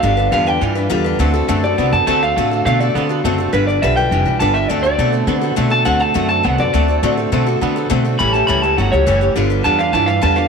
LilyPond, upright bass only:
\new Staff \with { instrumentName = "Upright bass" } { \clef bass \time 4/4 \key d \mixolydian \tempo 4 = 206 g,,4 e,4 g,4 e,4 | d,4 fis,4 c,8 fis,8 d,4 | a,4 b,4 d4 fis,,4 | g,,4 b,,4 f,,8 b,,8 g,,4 |
d,4 b,4 d4 b,4 | d,4 fis,4 c,8 fis,8 d,4 | a,4 b,4 d4 b,4 | a,,4 cis,4 g,,8 cis,8 fis,,4 |
g,,4 e,4 g,4 e,4 | }